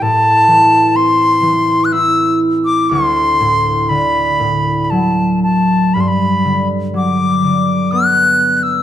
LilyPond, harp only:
\new Staff \with { instrumentName = "Harp" } { \clef bass \time 3/4 \key g \major \tempo 4 = 61 a,8 e8 c'8 e8 e'4 | d,8 a,8 d8 a,8 fis4 | g,8 d8 fis8 d8 b4 | }